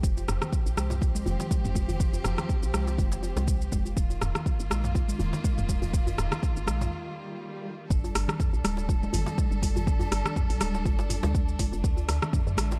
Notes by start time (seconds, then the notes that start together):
0.03 F1 F3 C4 G4, kick, shaker
0.17 djembe tone, shaker
0.28 F1, cross-stick, mid tom, shaker
0.42 cross-stick, low conga, shaker
0.53 kick, shaker
0.66 A#1, shaker
0.77 C2, cross-stick, high conga, shaker
0.90 mid tom, djembe slap, shaker
1.01 kick, djembe tone, shaker
1.15 high conga, shaker
1.26 F1, low conga, djembe bass, shaker
1.40 djembe slap, low conga, shaker
1.51 kick, high conga, shaker
1.65 F1, mid tom, shaker
1.75 kick, djembe tone, high conga, shaker
1.88 djembe tone, djembe bass, low conga, shaker
2.00 kick, shaker
2.13 djembe tone, djembe bass, shaker
2.24 F1, cross-stick, mid tom, shaker
2.38 cross-stick, low conga, shaker
2.49 kick, shaker
2.63 A#1, shaker
2.74 C2, cross-stick, high conga, shaker
2.87 djembe slap, shaker
2.98 F1, kick, high conga, djembe bass, low conga, shaker
3.12 djembe slap, shaker
3.23 djembe tone, shaker
3.37 C2, djembe slap, high conga, shaker
3.48 kick, shaker
3.61 shaker
3.72 F1, kick, mid tom, high conga, djembe tone, shaker
3.85 djembe tone, shaker
3.97 D#1 D#3 A#3 F4, kick, shaker
4.10 djembe tone, shaker
4.21 D#1, cross-stick, mid tom, shaker
4.35 cross-stick, low conga, shaker
4.46 kick, shaker
4.60 G1, shaker
4.71 A#1, cross-stick, high conga, shaker
4.84 mid tom, djembe slap, shaker
4.95 kick, djembe tone, shaker
5.08 high conga, shaker
5.19 D#1, djembe bass, low conga, shaker
5.33 djembe slap, low conga, shaker
5.44 kick, high conga, shaker
5.58 D#1, mid tom, shaker
5.69 kick, high conga, djembe tone, shaker
5.82 djembe tone, djembe bass, low conga, shaker
5.94 kick, shaker
6.07 djembe tone, djembe bass, shaker
6.18 D#1, cross-stick, mid tom, shaker
6.32 cross-stick, low conga, shaker
6.43 kick, shaker
6.56 G1, shaker
6.67 A#1, cross-stick, high conga, shaker
6.81 mid tom, djembe slap, shaker
6.92 swell
7.90 G1 G3 D4 A4, kick, shaker
8.04 djembe tone, shaker
8.15 G1, cross-stick, open hi-hat, shaker
8.28 cross-stick, low conga, shaker
8.40 kick, mid tom, shaker
8.53 A#1, shaker
8.64 D1, cross-stick, open hi-hat, high conga, shaker
8.77 djembe slap, shaker
8.89 kick, djembe tone, shaker
9.03 high conga, shaker
9.13 G1, open hi-hat, djembe bass, low conga, shaker
9.26 djembe slap, low conga, shaker
9.38 kick, high conga, shaker
9.51 G1, shaker
9.62 kick, open hi-hat, djembe tone, high conga, shaker
9.76 djembe tone, low conga, djembe bass, shaker
9.87 kick, shaker
10.00 djembe tone, djembe bass, shaker
10.12 G1, cross-stick, open hi-hat, shaker
10.25 cross-stick, low conga, shaker
10.36 kick, mid tom, shaker
10.50 A#1, open hi-hat, shaker
10.61 D1, cross-stick, open hi-hat, high conga, shaker
10.74 djembe slap, shaker
10.85 G1, kick, high conga, djembe bass, shaker
10.99 djembe slap, shaker
11.09 mid tom, open hi-hat, djembe tone, shaker
11.23 D2, djembe slap, high conga, shaker
11.35 kick, shaker
11.48 shaker
11.59 G1, kick, open hi-hat, high conga, djembe tone, shaker
11.72 F1, djembe tone, shaker
11.83 D2 D3 A3, kick, shaker
11.97 djembe tone, shaker
12.09 D2, cross-stick, open hi-hat, shaker
12.22 cross-stick, low conga, shaker
12.33 kick, mid tom, shaker
12.47 F#2, shaker
12.57 A1, cross-stick, open hi-hat, high conga, shaker
12.71 djembe slap, shaker